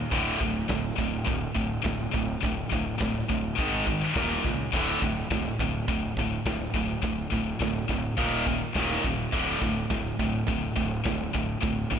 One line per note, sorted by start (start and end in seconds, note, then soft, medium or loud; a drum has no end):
0.11 0.33 D1 medium
0.11 0.39 D2 medium
0.11 0.39 A2 loud
0.11 0.39 D3 loud
0.11 kick loud
0.11 open hi-hat medium
0.40 0.62 D1 medium
0.40 0.66 D2 medium
0.40 0.66 A2 medium
0.40 kick medium
0.68 0.90 D1 medium
0.68 0.95 D2 medium
0.68 0.95 A2 medium
0.68 kick loud
0.68 snare loud
0.68 open hi-hat medium
0.96 1.19 D1 medium
0.96 1.23 D2 medium
0.96 1.23 A2 medium
0.96 kick medium
1.24 1.48 D1 medium
1.24 1.52 D2 medium
1.24 1.52 A2 medium
1.24 kick loud
1.24 open hi-hat medium
1.55 1.77 D1 medium
1.55 1.81 D2 medium
1.55 1.81 A2 medium
1.55 kick medium
1.82 2.06 D1 medium
1.82 2.09 D2 medium
1.82 2.09 A2 medium
1.82 kick loud
1.82 open hi-hat medium
1.86 snare loud
2.11 2.35 D1 medium
2.11 2.38 D2 medium
2.11 2.39 A2 medium
2.11 kick loud
2.41 2.63 D1 medium
2.41 2.67 D2 medium
2.41 2.67 A2 medium
2.41 kick loud
2.41 open hi-hat medium
2.70 2.92 D1 medium
2.70 2.96 D2 medium
2.70 2.96 A2 medium
2.70 kick medium
2.98 3.22 D1 loud
2.98 3.25 D2 medium
2.98 3.25 A2 medium
2.98 kick loud
2.98 snare loud
2.98 open hi-hat medium
3.29 3.50 D1 medium
3.29 3.54 D2 medium
3.29 3.55 A2 medium
3.29 kick medium
3.55 4.00 G#1 medium
3.55 3.83 G#2 medium
3.55 3.84 D#3 medium
3.55 3.84 G#3 loud
3.55 kick loud
3.55 open hi-hat medium
3.86 4.12 G#2 medium
3.86 4.12 D#3 medium
3.86 kick medium
4.14 4.36 D#1 loud
4.14 4.41 D#2 medium
4.14 4.42 A#2 medium
4.14 4.42 D#3 loud
4.14 kick loud
4.14 snare loud
4.14 open hi-hat medium
4.44 4.65 C#2 medium
4.44 4.69 D#2 medium
4.44 4.70 A#2 medium
4.44 kick medium
4.72 4.94 D1 loud
4.72 4.99 D2 medium
4.72 5.00 A2 medium
4.72 5.00 D3 medium
4.72 kick loud
4.72 open hi-hat soft
5.01 5.23 D1 medium
5.01 5.27 D2 medium
5.01 5.27 A2 medium
5.01 kick medium
5.30 5.51 D1 medium
5.30 5.56 D2 medium
5.30 5.56 A2 medium
5.30 kick loud
5.30 snare loud
5.30 open hi-hat medium
5.59 5.80 D1 medium
5.59 5.85 D2 medium
5.59 5.86 A2 medium
5.59 kick medium
5.88 6.09 D1 medium
5.88 6.14 D2 medium
5.88 6.14 A2 medium
5.88 kick loud
5.88 open hi-hat medium
6.16 6.37 D1 medium
6.16 6.43 D2 medium
6.16 6.44 A2 medium
6.16 kick medium
6.46 6.67 D1 medium
6.46 6.71 D2 medium
6.46 6.72 A2 medium
6.46 kick loud
6.46 snare loud
6.46 open hi-hat medium
6.74 6.95 D1 medium
6.74 7.00 D2 medium
6.74 7.00 A2 medium
6.74 kick medium
7.02 7.24 D1 medium
7.02 7.28 D2 medium
7.02 7.28 A2 medium
7.02 kick loud
7.02 open hi-hat medium
7.30 7.53 D1 medium
7.30 7.57 D2 medium
7.30 7.57 A2 medium
7.30 kick medium
7.59 7.81 D1 medium
7.59 7.85 D2 medium
7.59 7.86 A2 medium
7.59 kick loud
7.59 snare loud
7.59 open hi-hat medium
7.88 8.10 D1 medium
7.88 8.14 D2 medium
7.88 8.14 A2 medium
7.88 kick medium
8.17 8.60 D#1 medium
8.17 8.44 D#2 medium
8.17 8.44 A#2 loud
8.17 8.45 D#3 loud
8.17 kick loud
8.17 open hi-hat medium
8.46 8.72 D#2 medium
8.46 8.72 A#2 medium
8.46 kick medium
8.75 8.96 D#1 loud
8.75 9.02 D#2 loud
8.75 9.02 A#2 loud
8.75 9.02 D#3 loud
8.75 kick loud
8.75 snare loud
8.75 open hi-hat medium
9.04 9.25 D#1 medium
9.04 9.30 D#2 medium
9.04 9.30 A#2 medium
9.04 kick medium
9.32 9.54 D1 medium
9.32 9.59 D2 loud
9.32 9.60 A2 medium
9.32 9.60 D3 loud
9.32 kick loud
9.32 open hi-hat medium
9.61 9.82 D1 medium
9.61 9.87 D2 medium
9.61 9.87 A2 medium
9.61 kick medium
9.90 10.12 D1 medium
9.90 10.16 D2 medium
9.90 10.16 A2 medium
9.90 kick loud
9.90 snare loud
9.90 open hi-hat medium
10.19 10.40 D1 medium
10.19 10.46 D2 medium
10.19 10.46 A2 medium
10.19 kick medium
10.48 10.69 D1 medium
10.48 10.74 D2 medium
10.48 10.74 A2 medium
10.48 kick loud
10.48 open hi-hat medium
10.76 10.98 D1 medium
10.76 11.02 D2 medium
10.76 11.02 A2 medium
10.76 kick medium
11.04 11.27 D1 medium
11.04 11.31 D2 medium
11.04 11.31 A2 medium
11.04 kick loud
11.04 snare loud
11.04 open hi-hat medium
11.33 11.55 D1 medium
11.33 11.59 D2 medium
11.33 11.60 A2 medium
11.33 kick medium
11.61 11.84 D1 medium
11.61 11.88 D2 medium
11.61 11.88 A2 medium
11.61 kick loud
11.61 open hi-hat medium
11.90 11.99 D1 medium
11.90 11.99 D2 medium
11.90 11.99 A2 medium
11.90 kick medium